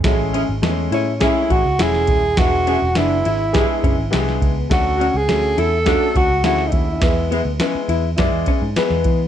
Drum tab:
RD |x-x-x-x-x-x-x-x-|x-x-x-x-x-x-x-x-|x-x-x-x-x-x-x-x-|x-x-x-x-x-x-x-x-|
SD |o---o---o---oo--|o---o---o---oo--|o---o---o---oo--|o---o---o---oo--|
BD |o-------o-o---o-|o-------o-o---o-|o-------o-o---o-|o-------o-o---o-|